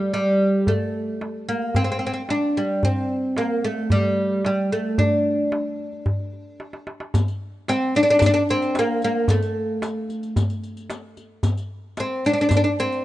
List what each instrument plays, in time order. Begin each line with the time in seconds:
Already playing: oud G3
0.14 oud G3, darbuka tek
0.40 darbuka ka
0.67 oud A3, darbuka dum
1.21 darbuka tek
1.49 oud A#3
1.61 darbuka ka
1.75 oud C4, darbuka dum
1.84 oud C4
1.89 oud C4, darbuka ka
1.99 oud C4
2.07 oud C4
2.14 oud C4
2.29 oud D4, darbuka tek
2.56 oud G3, darbuka ka
2.83 oud C4, darbuka dum
3.37 oud A#3, darbuka tek
3.65 oud A3
3.77 darbuka ka
3.90 oud G3, darbuka dum
4.45 oud G3, darbuka tek
4.72 oud A3, darbuka ka
4.98 oud D4, darbuka dum
5.25 darbuka ka
5.52 darbuka tek
5.79 darbuka ka
5.93 darbuka ka
6.06 darbuka dum
6.19 darbuka ka
6.33 darbuka ka
6.60 darbuka tek
6.73 darbuka ka
6.87 darbuka tek
7.00 darbuka ka
7.14 riq, darbuka dum
7.28 riq
7.68 oud C4, riq, darbuka tek
7.95 oud D4, riq, darbuka ka
8.03 oud D4
8.08 oud D4, riq
8.19 oud D4, riq, darbuka dum
8.26 oud D4
8.34 oud D4, riq
8.49 oud C4, riq
8.62 riq
8.75 oud A#3, riq, darbuka tek
9.02 oud A#3, riq, darbuka ka
9.28 oud A3, riq, darbuka dum
9.42 riq
9.82 riq, darbuka tek
10.09 riq, darbuka ka
10.23 riq
10.36 riq, darbuka dum
10.50 riq
10.63 riq
10.77 riq
10.90 riq, darbuka tek
11.17 riq, darbuka ka
11.43 riq, darbuka dum
11.57 riq
11.97 oud C4, riq, darbuka tek
12.25 oud D4, riq
12.33 oud D4
12.38 oud D4, riq
12.49 oud D4, riq, darbuka dum
12.57 oud D4
12.64 oud D4, riq
12.79 oud C4, riq
12.92 riq